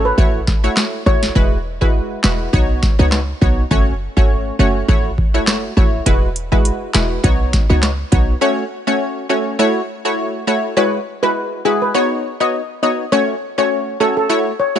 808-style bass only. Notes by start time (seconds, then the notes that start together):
Already playing: G#1
0.18 A1
1.06 A1
1.36 E1
1.82 F#1
2.24 E1
2.53 B1
2.99 C#2
3.42 B1
3.71 F#1
4.17 G#1
4.59 F#1
4.88 A1
5.35 F#1
5.77 A1
6.06 E1
6.52 F#1
6.95 E1
7.24 B1
7.70 C#2
8.12 B1